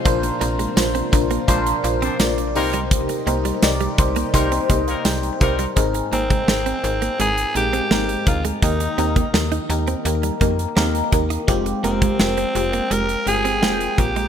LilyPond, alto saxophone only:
\new Staff \with { instrumentName = "Alto saxophone" } { \time 4/4 \key aes \lydian \tempo 4 = 84 r1 | r1 | r8 c'4. aes'8 g'4 f'8 | ees'4 r2. |
r8 c'4. bes'8 aes'4 g'8 | }